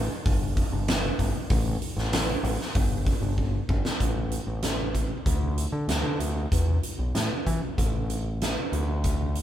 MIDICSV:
0, 0, Header, 1, 3, 480
1, 0, Start_track
1, 0, Tempo, 627615
1, 1148, Time_signature, 4, 2, 24, 8
1, 7207, End_track
2, 0, Start_track
2, 0, Title_t, "Picked electric bass"
2, 0, Program_c, 0, 34
2, 197, Note_on_c, 0, 31, 85
2, 490, Note_off_c, 0, 31, 0
2, 552, Note_on_c, 0, 31, 81
2, 845, Note_off_c, 0, 31, 0
2, 911, Note_on_c, 0, 31, 91
2, 1008, Note_off_c, 0, 31, 0
2, 1149, Note_on_c, 0, 33, 106
2, 1344, Note_off_c, 0, 33, 0
2, 1503, Note_on_c, 0, 33, 77
2, 1799, Note_off_c, 0, 33, 0
2, 1861, Note_on_c, 0, 33, 87
2, 1961, Note_off_c, 0, 33, 0
2, 2105, Note_on_c, 0, 31, 83
2, 2399, Note_off_c, 0, 31, 0
2, 2457, Note_on_c, 0, 31, 81
2, 2754, Note_off_c, 0, 31, 0
2, 2823, Note_on_c, 0, 31, 93
2, 2921, Note_off_c, 0, 31, 0
2, 3062, Note_on_c, 0, 33, 80
2, 3357, Note_off_c, 0, 33, 0
2, 3417, Note_on_c, 0, 33, 65
2, 3912, Note_off_c, 0, 33, 0
2, 4023, Note_on_c, 0, 38, 86
2, 4319, Note_off_c, 0, 38, 0
2, 4377, Note_on_c, 0, 50, 74
2, 4479, Note_off_c, 0, 50, 0
2, 4495, Note_on_c, 0, 38, 75
2, 4598, Note_off_c, 0, 38, 0
2, 4614, Note_on_c, 0, 50, 71
2, 4717, Note_off_c, 0, 50, 0
2, 4733, Note_on_c, 0, 38, 73
2, 4936, Note_off_c, 0, 38, 0
2, 4984, Note_on_c, 0, 40, 88
2, 5183, Note_off_c, 0, 40, 0
2, 5346, Note_on_c, 0, 35, 66
2, 5445, Note_off_c, 0, 35, 0
2, 5465, Note_on_c, 0, 45, 76
2, 5565, Note_off_c, 0, 45, 0
2, 5709, Note_on_c, 0, 52, 73
2, 5808, Note_off_c, 0, 52, 0
2, 5949, Note_on_c, 0, 33, 84
2, 6543, Note_off_c, 0, 33, 0
2, 6672, Note_on_c, 0, 38, 85
2, 7167, Note_off_c, 0, 38, 0
2, 7207, End_track
3, 0, Start_track
3, 0, Title_t, "Drums"
3, 197, Note_on_c, 9, 36, 112
3, 198, Note_on_c, 9, 46, 74
3, 274, Note_off_c, 9, 36, 0
3, 275, Note_off_c, 9, 46, 0
3, 433, Note_on_c, 9, 46, 56
3, 436, Note_on_c, 9, 36, 85
3, 510, Note_off_c, 9, 46, 0
3, 512, Note_off_c, 9, 36, 0
3, 673, Note_on_c, 9, 46, 72
3, 678, Note_on_c, 9, 38, 109
3, 750, Note_off_c, 9, 46, 0
3, 754, Note_off_c, 9, 38, 0
3, 911, Note_on_c, 9, 36, 69
3, 911, Note_on_c, 9, 46, 58
3, 988, Note_off_c, 9, 36, 0
3, 988, Note_off_c, 9, 46, 0
3, 1146, Note_on_c, 9, 46, 72
3, 1150, Note_on_c, 9, 36, 112
3, 1222, Note_off_c, 9, 46, 0
3, 1226, Note_off_c, 9, 36, 0
3, 1390, Note_on_c, 9, 46, 56
3, 1466, Note_off_c, 9, 46, 0
3, 1514, Note_on_c, 9, 38, 30
3, 1590, Note_off_c, 9, 38, 0
3, 1627, Note_on_c, 9, 46, 78
3, 1632, Note_on_c, 9, 38, 112
3, 1704, Note_off_c, 9, 46, 0
3, 1708, Note_off_c, 9, 38, 0
3, 1869, Note_on_c, 9, 46, 52
3, 1946, Note_off_c, 9, 46, 0
3, 1994, Note_on_c, 9, 38, 35
3, 2071, Note_off_c, 9, 38, 0
3, 2102, Note_on_c, 9, 46, 77
3, 2105, Note_on_c, 9, 36, 107
3, 2179, Note_off_c, 9, 46, 0
3, 2182, Note_off_c, 9, 36, 0
3, 2344, Note_on_c, 9, 36, 86
3, 2346, Note_on_c, 9, 46, 52
3, 2421, Note_off_c, 9, 36, 0
3, 2422, Note_off_c, 9, 46, 0
3, 2584, Note_on_c, 9, 36, 60
3, 2661, Note_off_c, 9, 36, 0
3, 2822, Note_on_c, 9, 36, 87
3, 2898, Note_off_c, 9, 36, 0
3, 2944, Note_on_c, 9, 38, 78
3, 3021, Note_off_c, 9, 38, 0
3, 3062, Note_on_c, 9, 36, 91
3, 3063, Note_on_c, 9, 42, 72
3, 3139, Note_off_c, 9, 36, 0
3, 3140, Note_off_c, 9, 42, 0
3, 3300, Note_on_c, 9, 42, 50
3, 3376, Note_off_c, 9, 42, 0
3, 3537, Note_on_c, 9, 42, 75
3, 3542, Note_on_c, 9, 38, 90
3, 3613, Note_off_c, 9, 42, 0
3, 3618, Note_off_c, 9, 38, 0
3, 3783, Note_on_c, 9, 36, 70
3, 3783, Note_on_c, 9, 42, 52
3, 3859, Note_off_c, 9, 36, 0
3, 3860, Note_off_c, 9, 42, 0
3, 4023, Note_on_c, 9, 36, 96
3, 4026, Note_on_c, 9, 42, 75
3, 4099, Note_off_c, 9, 36, 0
3, 4103, Note_off_c, 9, 42, 0
3, 4265, Note_on_c, 9, 42, 60
3, 4341, Note_off_c, 9, 42, 0
3, 4502, Note_on_c, 9, 42, 73
3, 4506, Note_on_c, 9, 38, 91
3, 4578, Note_off_c, 9, 42, 0
3, 4583, Note_off_c, 9, 38, 0
3, 4743, Note_on_c, 9, 42, 59
3, 4820, Note_off_c, 9, 42, 0
3, 4985, Note_on_c, 9, 36, 96
3, 4988, Note_on_c, 9, 42, 77
3, 5062, Note_off_c, 9, 36, 0
3, 5064, Note_off_c, 9, 42, 0
3, 5225, Note_on_c, 9, 42, 54
3, 5301, Note_off_c, 9, 42, 0
3, 5467, Note_on_c, 9, 42, 69
3, 5471, Note_on_c, 9, 38, 94
3, 5543, Note_off_c, 9, 42, 0
3, 5548, Note_off_c, 9, 38, 0
3, 5709, Note_on_c, 9, 36, 75
3, 5711, Note_on_c, 9, 42, 54
3, 5786, Note_off_c, 9, 36, 0
3, 5787, Note_off_c, 9, 42, 0
3, 5952, Note_on_c, 9, 36, 97
3, 5953, Note_on_c, 9, 42, 69
3, 6028, Note_off_c, 9, 36, 0
3, 6030, Note_off_c, 9, 42, 0
3, 6192, Note_on_c, 9, 42, 54
3, 6269, Note_off_c, 9, 42, 0
3, 6435, Note_on_c, 9, 42, 64
3, 6440, Note_on_c, 9, 38, 92
3, 6512, Note_off_c, 9, 42, 0
3, 6517, Note_off_c, 9, 38, 0
3, 6675, Note_on_c, 9, 42, 49
3, 6752, Note_off_c, 9, 42, 0
3, 6912, Note_on_c, 9, 42, 70
3, 6916, Note_on_c, 9, 36, 91
3, 6988, Note_off_c, 9, 42, 0
3, 6993, Note_off_c, 9, 36, 0
3, 7153, Note_on_c, 9, 42, 50
3, 7207, Note_off_c, 9, 42, 0
3, 7207, End_track
0, 0, End_of_file